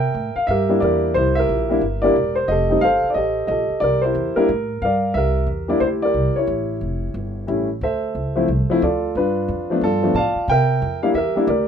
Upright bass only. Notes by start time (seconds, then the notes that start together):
Already playing: C3
0.14 A2
0.36 muted upright bass stroke
0.48 G2
0.82 E2
1.15 C2
1.49 A#1
1.81 G1
2.16 E1
2.48 F1
2.82 G1
3.04 muted upright bass stroke
3.15 A1
3.48 A#1
3.70 muted upright bass stroke
3.82 C2
4.15 E2
4.36 muted upright bass stroke
4.49 A2
4.82 G2
5.14 C2
5.47 E2
5.80 D2
6.14 C2
6.36 muted upright bass stroke
6.47 A1
6.81 F1
7.14 G1
7.48 A1
7.81 D2
8.15 C#2
8.48 C2
8.70 muted upright bass stroke
8.82 D2
9.15 G2
9.48 F2
9.81 G2
10.14 A2
10.36 muted upright bass stroke
10.48 C3
10.82 F2
11.14 E2
11.36 muted upright bass stroke
11.47 D2